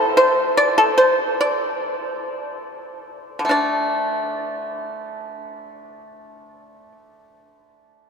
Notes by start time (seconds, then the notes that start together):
Already playing: A2 A4
0.17 C5
0.57 D5
0.78 A4
0.98 C5
1.41 D5
3.39 D3
3.45 A3
3.49 D4 D5